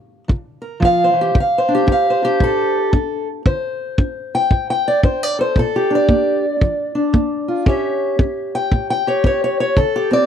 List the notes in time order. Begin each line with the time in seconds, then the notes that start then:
Already playing: G4
0.28 D3, kick
0.62 A#4
0.80 F3, kick
0.85 F5
1.04 C5
1.14 E3
1.21 G4
1.35 D3, kick
1.40 F5
1.58 C5
1.68 D4
1.75 G4
1.87 D4, kick
1.92 F5
2.10 C5
2.22 D4 G4
2.40 A2 A4, kick
2.93 D4, kick
3.46 D3 C5, kick
3.98 D4, kick
4.35 G5
4.51 A2, kick
4.70 G5
4.88 D5
5.03 D4 C5, kick
5.23 D5
5.39 A4 C5
5.56 A#2 A4, kick
5.76 G4
5.90 D4
5.95 D5
6.09 A#3, kick
6.61 F3, kick
6.95 D4
7.13 A#3, kick
7.48 F4
7.66 A2 C#4 G4 C#5 E5, kick
8.19 C#4, kick
8.55 G5
8.72 A2, kick
8.90 G5
9.07 G4 C#5
9.24 C#4 C#5, kick
9.44 C#5
9.60 C#5
9.77 D3 A4, kick
9.96 G4
10.11 C4 D5